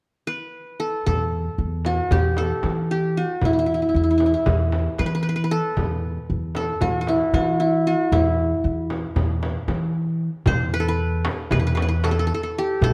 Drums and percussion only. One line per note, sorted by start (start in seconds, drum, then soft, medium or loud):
1.06 frame drum medium
1.85 frame drum medium
2.11 frame drum medium
2.37 frame drum medium
2.63 frame drum medium
3.41 frame drum medium
4.20 frame drum medium
4.46 frame drum medium
4.72 frame drum medium
4.98 frame drum medium
5.77 frame drum medium
6.55 frame drum medium
6.81 frame drum medium
7.07 frame drum medium
7.34 frame drum medium
8.12 frame drum medium
8.90 frame drum medium
9.16 frame drum medium
9.43 frame drum medium
9.68 frame drum medium
10.46 darbuka dum medium
10.46 frame drum medium
10.99 darbuka ka soft
11.25 darbuka tek medium
11.25 frame drum medium
11.51 frame drum medium
11.51 darbuka dum medium
11.77 darbuka tek medium
11.77 frame drum medium
12.04 darbuka tek medium
12.04 frame drum medium
12.82 darbuka dum medium
12.82 frame drum medium